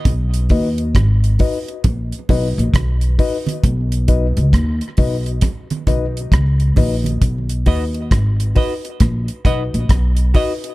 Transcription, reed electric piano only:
X:1
M:4/4
L:1/8
Q:"Swing 16ths" 1/4=67
K:B
V:1 name="Reed electric piano"
z [DFBd] z [DFBd] z [DFBd] z [DFBd] | z [DFBd] z [DFBd] z [DFBd] z [DFBd] | z [DFBd] z [DFBd] z [DFBd] z [DFBd] |]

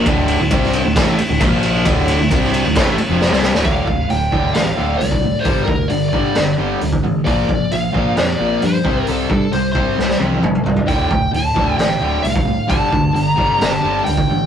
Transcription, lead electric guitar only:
X:1
M:4/4
L:1/8
Q:1/4=133
K:Dm
V:1 name="Lead electric guitar"
z8 | z8 | f2 g2 f2 d2 | c B d d2 z3 |
d2 f2 d2 c2 | A A c c2 z3 | g2 a2 g2 f2 | a2 b2 a2 g2 |]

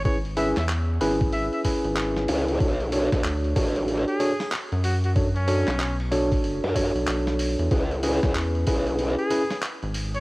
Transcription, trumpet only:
X:1
M:4/4
L:1/16
Q:"Swing 16ths" 1/4=94
K:C#phr
V:1 name="Trumpet"
c z e e z4 e e z6 | z8 z G3 z2 F F | z C4 z8 z3 | z8 z G3 z3 c |]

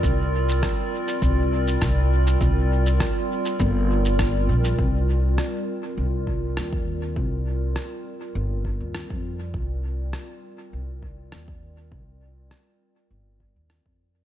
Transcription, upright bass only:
X:1
M:4/4
L:1/16
Q:"Swing 16ths" 1/4=101
K:Cm
V:1 name="Upright bass" clef=bass
C,,4 z4 C,,4 C,,4 | C,,4 z4 G,,,6 B,,,2 | C,,4 z4 C,,4 E,,4 | C,,4 z4 G,,,3 E,,2 F,,3 |
C,,4 z4 C,,4 E,,4 | C,,4 z4 G,,,3 E,,2 F,,3 |]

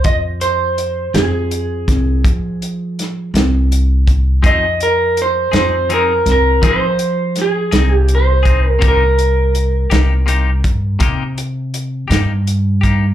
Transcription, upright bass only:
X:1
M:12/8
L:1/8
Q:3/8=55
K:Fdor
V:1 name="Upright bass" clef=bass
F,,3 F,,2 C,, F,3 C,,3 | F,,3 F,,2 C,, F,3 C,,3 | C,,3 C,,2 G,, C,3 G,,3 |]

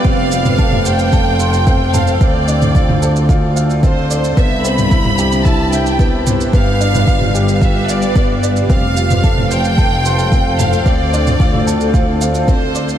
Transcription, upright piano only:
X:1
M:4/4
L:1/8
Q:1/4=111
K:Flyd
V:1 name="Upright piano"
C F A c A c' C a | C D F A F f C d | B, C E G E e B, c | B, D F G F f B, d |
C F A c A c' C a | C D F A F f C d |]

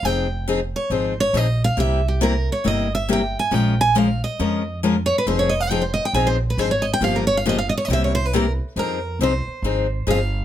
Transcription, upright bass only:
X:1
M:4/4
L:1/8
Q:"Swing" 1/4=138
K:Fm
V:1 name="Upright bass" clef=bass
F,,,4 A,,,2 B,,,2 | C,,4 G,,,4 | B,,,4 F,,4 | F,,,4 B,,,2 A,,,2 |
G,,,4 C,,4 | F,,2 C,, z A,,,2 G,,,2 |]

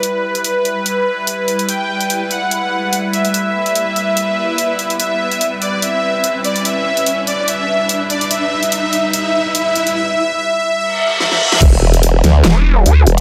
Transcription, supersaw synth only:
X:1
M:4/4
L:1/8
Q:"Swing 16ths" 1/4=145
K:Em
V:1 name="Supersaw synth"
B8 | g3 f4 e- | e8 | e3 d e3 d |
e3 d e3 d | e2 e2 e2 e2 | e e e e e e e e | z8 |]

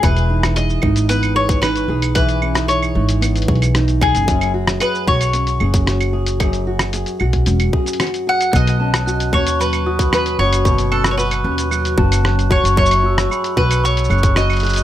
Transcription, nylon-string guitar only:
X:1
M:4/4
L:1/16
Q:1/4=113
K:Bmix
V:1 name="Nylon-string guitar"
[E,G]2 D2 G2 D2 B,2 G2 D2 G2 | [E,G]2 C D G2 D2 B,2 G2 D2 G2 | [F,,G]2 F2 G2 F2 C2 G2 F2 G2 | [F,,G]2 F2 G2 F2 C2 G2 F2 G2 |
B,,2 C2 F2 C2 F,2 F2 C2 F2 | B,,2 C2 F2 C2 F,2 F2 C2 F2 | F,,2 F2 G2 F2 F,2 G2 F2 G2 |]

